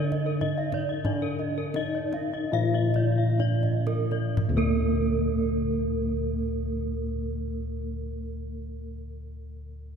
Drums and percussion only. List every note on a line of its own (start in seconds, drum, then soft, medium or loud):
0.12 kendang low soft
0.41 kendang low soft
0.57 kendang slap soft
0.72 kendang slap soft
0.72 kendang high soft
0.72 kendang low soft
0.89 kendang slap soft
1.05 kendang high soft
1.05 kendang low medium
1.21 kendang slap soft
1.39 kendang slap soft
1.74 kendang slap soft
1.74 kendang high soft
2.12 kendang slap soft
2.12 kendang high soft
2.32 kendang slap soft
2.73 kendang slap soft
2.94 kendang slap soft
2.94 kendang low soft
3.39 kendang low soft
3.63 kendang low soft
3.87 kendang high soft
4.11 kendang high soft
4.37 kendang low medium